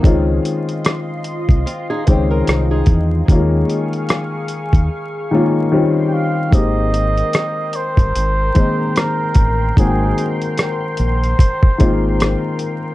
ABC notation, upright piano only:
X:1
M:4/4
L:1/8
Q:"Swing 16ths" 1/4=74
K:Ab
V:1 name="Upright piano"
[E,A,CDF]4 z [E,A,CDg]3 | [E,G,A,B,DF]4 z [E,A,B,DF] [E,G,CDF]2 | [E,A,B,CG]4 z [E,A,B,CE]3 | [E,A,B,C_G=g]4 z [E,A,B,CF]3 |]